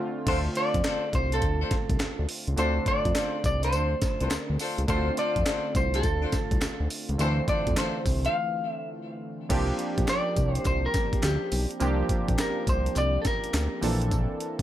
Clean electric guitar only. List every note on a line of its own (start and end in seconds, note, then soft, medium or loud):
0.28 0.36 C5 loud
0.57 1.15 D5 loud
1.15 1.34 C5 loud
1.34 2.26 A4 medium
2.59 2.87 C5 loud
2.88 3.45 D5 loud
3.46 3.63 D5 loud
3.64 4.28 C5 loud
4.28 4.56 A#4 loud
4.90 5.18 C5 loud
5.19 5.76 D5 loud
5.76 5.95 C5 loud
5.95 6.87 A4 medium
7.21 7.47 C5 medium
7.49 7.78 D5 medium
7.78 8.25 C5 medium
8.26 8.70 F5 loud
8.70 8.89 E5 loud
10.09 10.54 D5 loud
10.54 10.66 C5 loud
10.67 10.85 C5 loud
10.86 11.21 A#4 loud
11.25 11.68 G4 medium
12.40 12.66 A#4 medium
12.69 12.98 C5 loud
12.98 13.20 D5 loud
13.22 13.26 A4 medium
13.27 13.80 A#4 medium